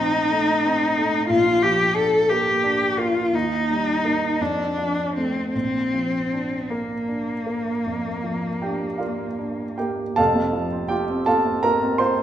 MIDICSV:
0, 0, Header, 1, 3, 480
1, 0, Start_track
1, 0, Key_signature, -2, "major"
1, 0, Tempo, 668151
1, 934, Time_signature, 12, 3, 24, 8
1, 1896, Tempo, 709220
1, 3336, Tempo, 773196
1, 6696, Tempo, 733496
1, 8036, End_track
2, 0, Start_track
2, 0, Title_t, "Cello"
2, 0, Program_c, 0, 42
2, 0, Note_on_c, 0, 63, 73
2, 903, Note_off_c, 0, 63, 0
2, 931, Note_on_c, 0, 65, 75
2, 1169, Note_on_c, 0, 67, 75
2, 1180, Note_off_c, 0, 65, 0
2, 1401, Note_on_c, 0, 69, 72
2, 1412, Note_off_c, 0, 67, 0
2, 1646, Note_on_c, 0, 67, 69
2, 1657, Note_off_c, 0, 69, 0
2, 2132, Note_on_c, 0, 65, 59
2, 2142, Note_off_c, 0, 67, 0
2, 2376, Note_on_c, 0, 63, 67
2, 2387, Note_off_c, 0, 65, 0
2, 3098, Note_on_c, 0, 62, 59
2, 3109, Note_off_c, 0, 63, 0
2, 3573, Note_off_c, 0, 62, 0
2, 3577, Note_on_c, 0, 60, 52
2, 3811, Note_off_c, 0, 60, 0
2, 3821, Note_on_c, 0, 60, 59
2, 4536, Note_on_c, 0, 58, 43
2, 4545, Note_off_c, 0, 60, 0
2, 6461, Note_off_c, 0, 58, 0
2, 8036, End_track
3, 0, Start_track
3, 0, Title_t, "Grand piano"
3, 0, Program_c, 1, 0
3, 0, Control_c, 1, 64, 127
3, 0, Note_on_c, 1, 34, 42
3, 0, Note_on_c, 1, 53, 35
3, 0, Note_on_c, 1, 57, 38
3, 0, Note_on_c, 1, 60, 37
3, 127, Note_off_c, 1, 53, 0
3, 224, Note_off_c, 1, 57, 0
3, 224, Note_on_c, 1, 57, 39
3, 370, Note_off_c, 1, 60, 0
3, 468, Note_on_c, 1, 60, 39
3, 605, Note_off_c, 1, 57, 0
3, 703, Note_on_c, 1, 57, 40
3, 841, Note_off_c, 1, 60, 0
3, 912, Note_off_c, 1, 34, 0
3, 930, Note_on_c, 1, 34, 48
3, 937, Note_off_c, 1, 57, 0
3, 946, Control_c, 1, 64, 0
3, 1066, Control_c, 1, 64, 127
3, 1178, Note_on_c, 1, 53, 37
3, 1398, Note_on_c, 1, 62, 38
3, 1554, Note_off_c, 1, 53, 0
3, 1651, Note_on_c, 1, 58, 40
3, 1790, Note_off_c, 1, 62, 0
3, 1894, Note_on_c, 1, 62, 41
3, 2038, Note_off_c, 1, 58, 0
3, 2127, Note_on_c, 1, 58, 37
3, 2273, Note_off_c, 1, 62, 0
3, 2339, Note_off_c, 1, 34, 0
3, 2362, Note_on_c, 1, 39, 45
3, 2366, Note_off_c, 1, 58, 0
3, 2379, Control_c, 1, 64, 0
3, 2470, Control_c, 1, 64, 127
3, 2617, Note_on_c, 1, 55, 35
3, 2850, Note_on_c, 1, 58, 32
3, 2858, Note_on_c, 1, 63, 34
3, 2994, Note_off_c, 1, 55, 0
3, 3061, Note_off_c, 1, 39, 0
3, 3065, Note_off_c, 1, 58, 0
3, 3069, Note_off_c, 1, 63, 0
3, 3095, Note_on_c, 1, 41, 43
3, 3098, Control_c, 1, 64, 0
3, 3219, Control_c, 1, 64, 127
3, 3344, Note_on_c, 1, 53, 31
3, 3588, Note_on_c, 1, 57, 29
3, 3592, Note_on_c, 1, 60, 32
3, 3722, Note_off_c, 1, 53, 0
3, 3798, Note_off_c, 1, 41, 0
3, 3799, Note_off_c, 1, 57, 0
3, 3801, Note_off_c, 1, 60, 0
3, 3822, Note_on_c, 1, 34, 37
3, 3826, Control_c, 1, 64, 0
3, 3950, Control_c, 1, 64, 127
3, 4063, Note_on_c, 1, 53, 28
3, 4308, Note_on_c, 1, 62, 31
3, 4439, Note_off_c, 1, 53, 0
3, 4543, Note_on_c, 1, 58, 30
3, 4679, Note_off_c, 1, 62, 0
3, 4776, Note_on_c, 1, 62, 30
3, 4914, Note_off_c, 1, 58, 0
3, 5011, Note_on_c, 1, 58, 30
3, 5150, Note_off_c, 1, 62, 0
3, 5220, Note_off_c, 1, 34, 0
3, 5258, Note_on_c, 1, 41, 28
3, 5392, Note_off_c, 1, 58, 0
3, 5491, Note_on_c, 1, 53, 29
3, 5642, Note_off_c, 1, 41, 0
3, 5728, Note_on_c, 1, 79, 54
3, 5737, Note_on_c, 1, 67, 42
3, 5742, Note_on_c, 1, 62, 31
3, 5877, Note_off_c, 1, 53, 0
3, 5950, Note_on_c, 1, 77, 46
3, 5957, Note_off_c, 1, 67, 0
3, 5959, Note_on_c, 1, 74, 37
3, 5961, Note_on_c, 1, 65, 36
3, 5967, Note_on_c, 1, 58, 30
3, 5969, Note_off_c, 1, 79, 0
3, 6120, Note_off_c, 1, 62, 0
3, 6206, Note_on_c, 1, 62, 31
3, 6357, Note_off_c, 1, 58, 0
3, 6428, Note_off_c, 1, 65, 0
3, 6428, Note_off_c, 1, 74, 0
3, 6446, Note_on_c, 1, 79, 56
3, 6448, Note_off_c, 1, 77, 0
3, 6452, Note_on_c, 1, 67, 44
3, 6460, Note_on_c, 1, 58, 30
3, 6601, Note_off_c, 1, 62, 0
3, 6677, Note_off_c, 1, 67, 0
3, 6685, Note_on_c, 1, 81, 82
3, 6691, Note_off_c, 1, 79, 0
3, 6692, Note_on_c, 1, 77, 64
3, 6693, Note_on_c, 1, 29, 53
3, 6695, Note_on_c, 1, 69, 64
3, 6698, Note_off_c, 1, 58, 0
3, 6698, Note_on_c, 1, 41, 56
3, 6708, Control_c, 1, 64, 0
3, 6806, Note_on_c, 1, 48, 42
3, 6822, Control_c, 1, 64, 127
3, 6927, Note_on_c, 1, 53, 43
3, 7006, Note_off_c, 1, 48, 0
3, 7051, Note_on_c, 1, 60, 45
3, 7126, Note_off_c, 1, 53, 0
3, 7152, Note_off_c, 1, 77, 0
3, 7153, Note_off_c, 1, 69, 0
3, 7158, Note_on_c, 1, 79, 77
3, 7167, Note_on_c, 1, 67, 58
3, 7171, Note_on_c, 1, 65, 46
3, 7174, Note_off_c, 1, 81, 0
3, 7248, Note_off_c, 1, 60, 0
3, 7300, Note_on_c, 1, 60, 42
3, 7369, Note_off_c, 1, 65, 0
3, 7398, Note_off_c, 1, 67, 0
3, 7404, Note_on_c, 1, 81, 84
3, 7409, Note_on_c, 1, 69, 64
3, 7411, Note_off_c, 1, 79, 0
3, 7412, Note_on_c, 1, 77, 61
3, 7417, Note_on_c, 1, 65, 47
3, 7494, Note_off_c, 1, 60, 0
3, 7536, Note_on_c, 1, 60, 40
3, 7613, Note_off_c, 1, 65, 0
3, 7640, Note_off_c, 1, 69, 0
3, 7641, Note_off_c, 1, 77, 0
3, 7644, Note_on_c, 1, 82, 87
3, 7652, Note_on_c, 1, 70, 65
3, 7654, Note_on_c, 1, 65, 46
3, 7655, Note_off_c, 1, 81, 0
3, 7732, Note_off_c, 1, 60, 0
3, 7773, Note_on_c, 1, 60, 43
3, 7849, Note_off_c, 1, 65, 0
3, 7877, Note_on_c, 1, 84, 81
3, 7878, Note_off_c, 1, 70, 0
3, 7886, Note_on_c, 1, 72, 64
3, 7889, Note_on_c, 1, 65, 45
3, 7891, Note_off_c, 1, 82, 0
3, 7966, Note_off_c, 1, 60, 0
3, 8036, Note_off_c, 1, 29, 0
3, 8036, Note_off_c, 1, 41, 0
3, 8036, Note_off_c, 1, 65, 0
3, 8036, Note_off_c, 1, 72, 0
3, 8036, Note_off_c, 1, 84, 0
3, 8036, End_track
0, 0, End_of_file